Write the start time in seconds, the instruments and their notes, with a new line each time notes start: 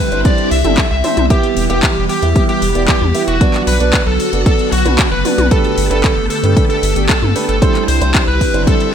Already playing: string machine D3 G3 C4 E4, lead electric guitar B4
0.12 analog synth bass G1, grand piano G3 D4 E4 C5, closed hi-hat
0.25 lead electric guitar D5, kick, closed hi-hat
0.38 closed hi-hat
0.51 analog synth bass C2, lead electric guitar E5, open hi-hat
0.65 analog synth bass G1, grand piano G3 D4 E4 A4, closed hi-hat, high tom
0.78 kick, clap, open hi-hat
0.91 analog synth bass C2, lead electric guitar E5
1.04 grand piano G3 D4 E4 C5, open hi-hat, high tom
1.17 analog synth bass C2, closed hi-hat, high tom
1.30 string machine E3 G3 B3 G4, grand piano B3 E4 G4 E5, lead electric guitar G4, kick, closed hi-hat
1.43 closed hi-hat
1.57 analog synth bass E1, open hi-hat
1.70 analog synth bass E1, grand piano B3 E4 G4 E5, lead electric guitar G4, closed hi-hat
1.83 kick, clap, closed hi-hat
1.96 analog synth bass E1
2.09 lead electric guitar G4, open hi-hat
2.22 analog synth bass E2, grand piano B3 E4 G4 E5, closed hi-hat
2.36 kick, closed hi-hat
2.49 lead electric guitar G4, closed hi-hat
2.62 analog synth bass E1, open hi-hat
2.75 analog synth bass E1, grand piano B3 E4 G4 D5, closed hi-hat
2.88 lead electric guitar G4, kick, clap, closed hi-hat
3.01 analog synth bass E2, high tom
3.15 grand piano B3 E4 G4 E5, open hi-hat
3.28 analog synth bass E1, lead electric guitar F#4, closed hi-hat
3.41 string machine D3 F#3 B3 F#4, grand piano B3 D4 F#4 D5, kick, closed hi-hat
3.54 clap, closed hi-hat
3.67 analog synth bass B1, lead electric guitar B4, open hi-hat
3.80 analog synth bass B1, grand piano B3 D4 F#4 D5, closed hi-hat
3.93 kick, clap, closed hi-hat
4.07 analog synth bass B1, lead electric guitar A4
4.20 open hi-hat
4.33 analog synth bass F#1, grand piano B3 D4 F#4 D5, closed hi-hat
4.46 lead electric guitar A4, kick, closed hi-hat
4.59 closed hi-hat
4.72 analog synth bass B1, lead electric guitar F#4, open hi-hat
4.85 analog synth bass B1, grand piano B3 D4 F#4 B4, closed hi-hat, high tom
4.99 kick, clap, closed hi-hat
5.12 analog synth bass F#1, lead electric guitar B4
5.25 grand piano B3 D4 F#4 D5, open hi-hat, high tom
5.38 analog synth bass B1, closed hi-hat, high tom
5.51 grand piano A3 D4 G4 B4, string machine A3 G4, lead electric guitar A4, kick, closed hi-hat
5.64 closed hi-hat
5.78 analog synth bass G1, open hi-hat
5.91 analog synth bass G1, grand piano A3 D4 G4 B4, lead electric guitar A4, closed hi-hat
6.04 kick, clap, closed hi-hat
6.17 analog synth bass G1
6.30 lead electric guitar A4, open hi-hat
6.43 analog synth bass G2, grand piano A3 D4 G4 B4, closed hi-hat
6.57 kick, closed hi-hat
6.70 lead electric guitar A4, closed hi-hat
6.83 analog synth bass G1, open hi-hat
6.96 analog synth bass G1, grand piano A3 D4 G4 A4, closed hi-hat
7.09 lead electric guitar A4, kick, clap, closed hi-hat
7.22 analog synth bass G2, high tom
7.36 grand piano A3 D4 G4 B4, open hi-hat
7.49 analog synth bass G1, lead electric guitar A4, closed hi-hat
7.62 string machine D3 G3 C4 E4, grand piano G3 D4 E4 C5, kick, closed hi-hat
7.75 clap, closed hi-hat
7.88 analog synth bass C2, lead electric guitar C5, open hi-hat
8.01 analog synth bass C2, grand piano G3 D4 E4 C5, closed hi-hat
8.15 kick, clap, closed hi-hat
8.28 analog synth bass C2, lead electric guitar B4
8.41 kick, open hi-hat
8.54 analog synth bass G1, grand piano G3 D4 E4 C5, closed hi-hat
8.67 lead electric guitar A4, kick, closed hi-hat
8.80 closed hi-hat